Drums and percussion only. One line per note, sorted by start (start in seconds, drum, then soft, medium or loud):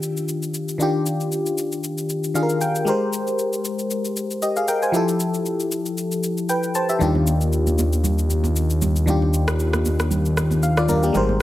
0.03 shaker medium
0.17 shaker soft
0.28 shaker medium
0.43 shaker soft
0.54 shaker medium
0.69 shaker medium
0.80 shaker medium
1.06 shaker medium
1.20 shaker soft
1.32 shaker medium
1.46 shaker medium
1.58 shaker medium
1.72 shaker soft
1.84 shaker medium
1.98 shaker medium
2.10 shaker medium
2.24 shaker medium
2.35 shaker medium
2.49 shaker medium
2.61 shaker medium
2.75 shaker medium
2.87 shaker medium
3.13 shaker medium
3.27 shaker soft
3.39 shaker medium
3.53 shaker medium
3.65 shaker medium
3.79 shaker medium
3.91 shaker medium
4.05 shaker medium
4.16 shaker medium
4.31 shaker soft
4.42 shaker medium
4.56 shaker medium
4.68 shaker medium
4.82 shaker medium
4.94 shaker medium
5.08 shaker medium
5.20 shaker medium
5.34 shaker soft
5.46 shaker medium
5.60 shaker medium
5.71 shaker medium
5.86 shaker medium
5.97 shaker medium
6.12 shaker medium
6.23 shaker medium
6.37 shaker medium
6.49 shaker medium
6.63 shaker medium
6.75 shaker medium
6.89 shaker medium
7.01 low conga medium
7.01 shaker medium
7.15 high conga medium
7.27 shaker medium
7.41 shaker soft
7.53 shaker medium
7.67 high conga medium
7.67 shaker medium
7.78 high conga medium
7.78 shaker medium
7.93 shaker medium
8.04 low conga medium
8.04 shaker medium
8.19 shaker medium
8.30 high conga soft
8.30 shaker medium
8.44 high conga medium
8.44 shaker medium
8.56 shaker medium
8.70 shaker medium
8.82 high conga medium
8.82 low conga medium
8.82 shaker medium
8.96 shaker medium
9.08 low conga medium
9.08 shaker medium
9.22 high conga medium
9.34 shaker medium
9.48 cross-stick loud
9.48 shaker soft
9.59 shaker medium
9.73 cross-stick medium
9.73 high conga medium
9.73 shaker medium
9.85 high conga medium
9.85 shaker medium
10.00 cross-stick medium
10.00 shaker medium
10.11 low conga medium
10.11 shaker medium
10.25 shaker medium
10.37 cross-stick medium
10.37 high conga soft
10.37 shaker medium
10.51 high conga medium
10.51 shaker soft
10.63 shaker medium
10.77 cross-stick medium
10.77 shaker medium
10.89 high conga medium
10.89 low conga medium
10.89 shaker medium
11.03 shaker medium
11.15 low conga medium
11.15 shaker medium
11.29 high conga medium